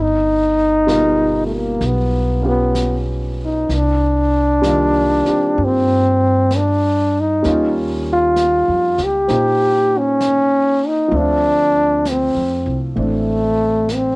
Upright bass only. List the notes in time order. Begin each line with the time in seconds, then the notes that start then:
Already playing: G1
1.81 B1
3.69 C2
5.28 muted upright bass stroke
5.58 G2
7.45 D#2
8.68 F2
8.99 C#2
9.30 A#2
11.11 D2
12.35 F2
12.66 C2
12.97 A1